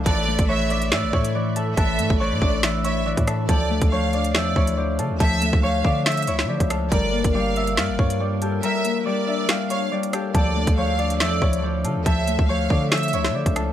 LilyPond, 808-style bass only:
\new Staff \with { instrumentName = "808-style bass" } { \clef bass \time 4/4 \key d \minor \tempo 4 = 140 a,,8. a,,4~ a,,16 a,16 a,,16 a,4. | a,,8 a,16 a,,8 a,16 a,,4.~ a,,16 a,8. | d,8. d,4~ d,16 e,8 d,4 d16 d,16 | d,8. d,8. d4 cis,16. d16. cis,8. |
g,,8. g,,4~ g,,16 g,16 g,,16 g,4. | r1 | d,8. d,4~ d,16 e,8 d,4 d16 d,16 | d,8. d,8. d4 cis,16. d16. cis,8. | }